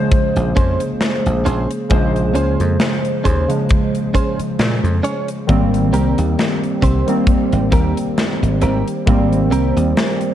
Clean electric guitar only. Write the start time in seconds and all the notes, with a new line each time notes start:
0.56 C#4 G#4 C5
1.45 C#4 G#4 C5
2.35 C#4 G#4 C5
3.24 C#4 G#4 C5
4.14 C#4 G#4 C5
5.03 C#4 G#4 C#5
5.93 C4 G4 A#4
6.82 C4 G4 C5
7.72 C4 G4 A#4
8.62 C4 G4 A#4
9.51 C4 G4 A#4